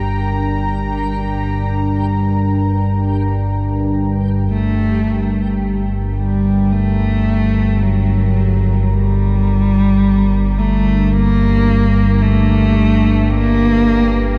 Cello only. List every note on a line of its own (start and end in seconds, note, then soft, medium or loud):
4.50 5.57 A3 loud
6.16 6.73 G3 medium
6.72 7.84 A3 loud
7.83 8.95 F#3 medium
8.93 10.60 G3 loud
10.59 11.14 A3 loud
11.12 12.23 A#3 loud
12.22 13.32 A3 loud
13.31 14.38 A#3 loud